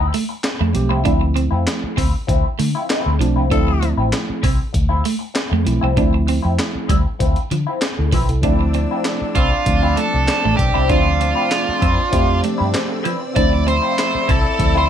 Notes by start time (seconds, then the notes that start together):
0.00 F3 C4 E4
0.13 A3, muted clean electric guitar stroke, open hi-hat
0.29 muted clean electric guitar stroke
0.43 muted clean electric guitar stroke, snare, clap, closed hi-hat
0.59 F2 A3, muted clean electric guitar stroke
0.74 B1 F3 A3 C4 G4, muted clean electric guitar stroke, closed hi-hat
0.89 C2 F3 C4 E4
1.03 D2 F3 A3 C4 D4 E4, kick, closed hi-hat
1.21 muted clean electric guitar stroke
1.34 C4, muted clean electric guitar stroke, closed hi-hat
1.51 F2 F3 C4 E4
1.66 muted clean electric guitar stroke, snare, clap, closed hi-hat
1.84 muted fingered electric bass stroke
1.96 D2 F3 C4 E4, kick, open hi-hat
2.13 muted clean electric guitar stroke
2.27 D2 F3 C4 E4, kick, closed hi-hat
2.59 D3 A3, muted clean electric guitar stroke, open hi-hat
2.75 F3 C4 E4
2.89 F3 C4 E4, snare, clap, closed hi-hat
3.06 D2
3.19 B1 F3 A3 C4 D4, muted clean electric guitar stroke, closed hi-hat
3.36 C2 F3 C4 E4
3.50 D2 F3 A3 C4 D4 E4 A4, kick, closed hi-hat
3.68 muted clean electric guitar stroke
3.82 C4, muted clean electric guitar stroke, closed hi-hat
3.97 A1 F3 C4 E4
4.12 muted clean electric guitar stroke, snare, clap, closed hi-hat
4.30 muted fingered electric bass stroke
4.42 C2 F3 C4 E4, kick, open hi-hat
4.59 muted clean electric guitar stroke
4.73 D2, muted clean electric guitar stroke, kick, closed hi-hat
4.89 F3 C4 E4
5.03 A3, muted clean electric guitar stroke, open hi-hat
5.19 muted clean electric guitar stroke
5.34 muted clean electric guitar stroke, snare, clap, closed hi-hat
5.50 F2 A3, muted clean electric guitar stroke
5.65 B1 F3 A3 C4 E4, muted clean electric guitar stroke, closed hi-hat
5.81 C2 F3 C4 E4
5.95 D2 E3 F3 A3 C4 D4 E4, kick, closed hi-hat
6.03 F3
6.14 muted clean electric guitar stroke
6.26 C4, muted clean electric guitar stroke, open hi-hat
6.42 F2 F3 C4 E4
6.57 muted clean electric guitar stroke, snare, clap, closed hi-hat
6.75 muted fingered electric bass stroke
6.87 D2 F3 G3 C4 E4, kick, closed hi-hat
7.05 muted clean electric guitar stroke
7.19 D2 F3 C4 E4, kick, closed hi-hat
7.36 closed hi-hat
7.50 D3 F3, muted clean electric guitar stroke, closed hi-hat
7.67 F3 C4 E4
7.82 muted clean electric guitar stroke, snare, clap, closed hi-hat
7.98 D2 E4 A4
8.12 B1 F3 C4 E4 F4 B4, kick, open hi-hat
8.28 C2 E4 A4, muted clean electric guitar stroke, closed hi-hat
8.42 D2 F3 A3 C4 D4 E4 D5 E6, kick, closed hi-hat
8.61 muted clean electric guitar stroke
8.74 C4, muted clean electric guitar stroke, closed hi-hat
8.91 F3 C4 E4
9.04 muted clean electric guitar stroke, snare, clap, closed hi-hat
9.22 muted fingered electric bass stroke
9.35 C2 F3 C4 E4 F4, kick, closed hi-hat
9.52 muted clean electric guitar stroke
9.66 D2 F3 A3 C4 F4, muted clean electric guitar stroke, kick, closed hi-hat
9.82 F3 C4 E4
9.97 A3 A4, muted clean electric guitar stroke, closed hi-hat
10.13 C2, muted clean electric guitar stroke
10.26 muted clean electric guitar stroke, snare, clap, closed hi-hat
10.44 A1 A3, muted clean electric guitar stroke
10.57 B1 G4, muted clean electric guitar stroke, kick, closed hi-hat
10.74 C2 F3 C4 E4
10.88 D2 F3 A3 C4 D4 E4 F4, kick, closed hi-hat
11.07 muted clean electric guitar stroke
11.19 C4, muted clean electric guitar stroke, closed hi-hat
11.35 F3 C4 E4
11.49 muted clean electric guitar stroke, snare, clap, closed hi-hat
11.69 muted fingered electric bass stroke
11.80 F2 F3 C4 E4, kick, closed hi-hat
11.97 muted clean electric guitar stroke
12.11 F2 F3 A3 C4 E4 G4, kick, closed hi-hat
12.42 A3 D5, muted clean electric guitar stroke, closed hi-hat
12.58 G2 F3 C4 E4
12.73 C5, muted clean electric guitar stroke, snare, clap, closed hi-hat
12.88 A4, muted clean electric guitar stroke
13.03 F3 C4 E4 B4, closed hi-hat
13.19 muted clean electric guitar stroke
13.34 D2 F3 A3 C4 D4 E4 D5, kick, closed hi-hat
13.53 muted clean electric guitar stroke
13.65 C4 C5, muted clean electric guitar stroke, closed hi-hat
13.82 F3 C4 E4
13.96 muted clean electric guitar stroke, snare, clap, closed hi-hat
14.15 muted fingered electric bass stroke
14.27 C2 F3 C4 E4 A4, kick, closed hi-hat
14.43 muted clean electric guitar stroke
14.58 D2 F3 A3 C4 E4, muted clean electric guitar stroke, kick, closed hi-hat
14.75 F3 C4 E4 C5